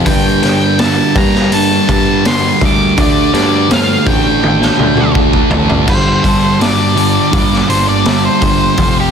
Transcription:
0.06 G2 D3 G3 A#3 D4 A4 G5, kick, open hi-hat
0.42 G2 D3 G3 A#3 D4 A4 G5, snare, open hi-hat
0.61 G3 A#3 D4 A4
0.78 G2 D3 G3 A#3 D4 A5, snare, open hi-hat
1.15 G2 D3 G3 A#3 D4 A#5, kick, open hi-hat
1.34 G3 A#3 D4 A4, snare
1.52 G2 D3 G3 A5, open hi-hat
1.70 G3 A#3 D4 A4
1.88 G2 D3 G3 A#3 D4 A4 A5, kick, open hi-hat
2.07 G3 A#3 D4 A4
2.24 G2 D3 G3 A#3 D4 A4 C6, snare, open hi-hat
2.43 G3 A#3 D4 A4
2.60 D2 G2 D3 G3 A#3 D4 A4, kick, open hi-hat
2.65 D6
2.96 D2 D3 G3 A3 D4 A4, kick, open hi-hat
3.01 D5
3.33 G2 D3 G3 A3 D4 A4 D5, snare, open hi-hat
3.52 G3 D4 A4
3.68 D3 G3 A3 D4, snare, open hi-hat
3.73 A4 F5
4.06 A1 D3 G3 A3 D4 A4 G5, kick, open hi-hat
4.25 G3 D4 A4
4.42 D3 A3 D4, high tom
4.62 G3 D4 A4, snare
4.77 D2 D3 A3 D4, mid tom
4.81 G3 D4 A4
4.97 G3 D4 A4, mid tom
5.13 D3 G3 A3 D4, kick
5.18 D4 A4
5.33 G3 D4 A4, kick
5.50 A1 D3 G3 A3 D4, floor tom
5.54 D4 A4
5.70 G1, floor tom
5.87 G1 G2 D3 G3 C5, kick, crash
6.23 G1 G2 D3 G3 A4, kick, open hi-hat
6.60 G2 D3 G3 D4 D5, snare, open hi-hat
6.96 G2 D3 G3 A4, open hi-hat
7.32 G1 G2 D3 G3 A#3, kick, open hi-hat
7.53 snare
7.68 G2 D3 G3 D4 C5, open hi-hat
7.89 D5
8.05 G2 D3 G3 A4, snare, open hi-hat
8.25 C5
8.41 G1 G2 D3 G3 A#3, kick, open hi-hat
8.77 F1 F2 C3 F3, kick, open hi-hat
9.00 G4

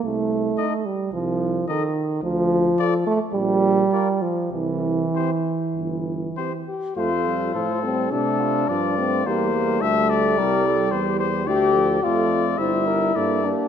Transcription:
0.03 C2 A3
0.58 D#4 A4 D#5
0.86 G3
1.13 C2 F3
1.68 D#3 D#4 A4 D#5
2.23 D2 F3
2.78 F4 A4 D5
3.07 A3
3.34 A#1 G3
3.92 F4 A#4 D5
4.22 F3
4.52 C2 E3
5.14 C4 G4 C5
5.76 G1
6.37 C4 G4 C5
6.68 G4
6.96 F2 A3 F4 A4 C5
7.26 G3
7.54 A2 F3 A4 C5
7.83 G3 C4 A4
8.12 C3 A3 D4 G4 A4
8.40 F4
8.69 G2 F3 F4 D5
8.98 A3 C4
9.25 E2 G3 A#3 G4 C5
9.54 G3
9.81 D2 A3 A4 E5
10.10 D5
10.37 C2 G3 A#4
10.65 A4
10.91 E2 G4 C5
11.19 C5
11.47 D2 A3 G4 A4 D5
11.75 F3
12.03 F2 A3 F4 A4 D5
12.58 G1 G3 E4 C5 E5
12.87 A#4
13.15 G2 A#3 A4 D5
13.43 A#3 D4 G4

